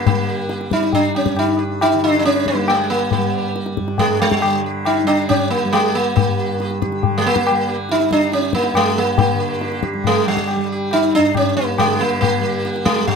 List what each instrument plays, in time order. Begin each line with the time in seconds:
Already playing: tanpura G2 D3 G3
0.06 sitar A#3, tabla tin, tabla ge
0.11 tanpura G3
0.29 sitar G4
0.49 sitar G4, tabla te
0.61 tabla te
0.70 tanpura G3, sitar D#4, tabla ke
0.83 tabla te
0.93 sitar D4, tabla tin, tabla ge
1.15 sitar C#4, tabla na
1.26 tabla ke
1.34 tanpura G2, tabla na
1.39 sitar D#4
1.59 sitar G4
1.81 sitar D#4, tabla na
1.93 tanpura D3
2.04 sitar D4
2.19 sitar D4
2.25 sitar C#4, tabla te
2.35 tabla te
2.46 sitar A#3, tabla ke
2.55 tanpura G3, tabla te
2.68 sitar G#3, tabla na
2.90 sitar A#3
3.11 sitar A#3, tabla tin, tabla ge
3.18 tanpura G3
3.56 tabla te
3.66 tabla te
3.77 tanpura G2, tabla ke
3.88 tabla te
3.98 sitar G#3, tabla tin, tabla ge
4.20 sitar G#3, tabla na
4.32 sitar G3, tabla ke
4.42 tanpura D3, tabla na
4.66 sitar G4
4.85 sitar D#4, tabla na
5.04 tanpura G3, sitar D4
5.08 tabla na
5.29 sitar C#4, tabla na, tabla ge
5.51 sitar A#3
5.65 tanpura G3
5.73 sitar G#3, tabla na
5.95 sitar A#3
6.16 sitar A#3, tabla tin, tabla ge
6.27 tanpura G2
6.40 sitar G4
6.60 sitar G4, tabla te
6.71 tabla te
6.82 sitar G4, tabla ke
6.88 tanpura D3
6.92 tabla te
7.03 tabla tin, tabla ge
7.18 sitar G#3
7.24 sitar A#3, tabla na
7.36 tabla ke
7.47 tanpura G3, sitar G4, tabla na
7.69 sitar G4
7.89 sitar D#4, tabla te
8.00 tabla te
8.11 tanpura G3, sitar D4, tabla ke
8.21 tabla te
8.32 sitar C#4, tabla te
8.42 tabla te
8.53 sitar A#3, tabla ke
8.64 tabla te
8.73 tanpura G2, sitar G#3, tabla na
8.98 sitar A#3
9.18 sitar A#3, tabla tin, tabla ge
9.33 tanpura D3
9.41 sitar G4
9.61 sitar G4, tabla te
9.72 tabla te
9.83 sitar G4, tabla ke
9.94 tanpura G3, tabla te
10.04 sitar G#3, tabla tin, tabla ge
10.25 sitar G3, tabla na
10.37 tabla ke
10.48 sitar G4, tabla na
10.56 tanpura G3
10.72 sitar G4
10.91 sitar D#4, tabla na
11.15 tanpura G2, sitar D4
11.35 sitar C#4, tabla na, tabla ge
11.57 sitar A#3
11.78 tanpura D3, sitar G#3, tabla na, tabla ge
12.00 sitar A#3, tabla te
12.21 sitar A#3, tabla tin, tabla ge
12.39 tanpura G3
12.44 sitar G4
12.65 sitar G4, tabla te
12.76 tabla te
12.85 sitar G#3, tabla ke
12.96 tanpura G3, tabla te
13.07 sitar G3, tabla tin, tabla ge